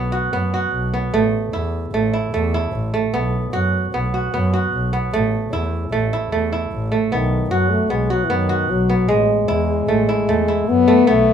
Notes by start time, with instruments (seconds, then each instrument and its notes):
Already playing: double bass B1, kora A3 B3 F#4
0.12 kora F#4
0.33 double bass F#2, kora B3
0.54 kora F#4
0.72 double bass B1
0.94 kora B3
1.13 double bass A1, kora A3
1.53 double bass E2, kora E4
1.93 double bass A1, kora A3
2.14 kora E4
2.33 double bass E2, kora A3
2.54 kora E4
2.73 double bass A1
2.94 kora A3
3.12 double bass B1, kora B3
3.52 double bass F#2, kora F#4
3.93 double bass B1, kora B3
4.14 kora F#4
4.33 double bass F#2, kora B3
4.53 kora F#4
4.72 double bass B1
4.93 kora B3
5.12 double bass A1, kora A3
5.52 double bass E2, kora E4
5.92 double bass A1, kora A3
6.13 kora E4
6.32 double bass E2, kora A3
6.52 kora E4
6.72 double bass A1
6.92 kora A3
7.12 double bass B1, french horn D#3, kora B3
7.50 double bass F#2, french horn F#3, kora F#4
7.71 french horn A3
7.90 double bass B1, french horn G#3, kora B3
8.10 french horn F#3, kora F#4
8.24 french horn E3
8.29 double bass F#2, french horn D#3, kora B3
8.49 kora F#4
8.69 double bass B1, french horn F#3
8.90 kora B3
9.08 double bass A1, kora G#3, french horn G#3
9.48 double bass E2, kora E4
9.88 double bass A1, kora A3
10.09 kora E4
10.28 double bass E2, kora A3
10.48 kora E4
10.68 double bass F#2, french horn B3
10.88 kora A3
11.07 double bass B1, french horn A3, kora B3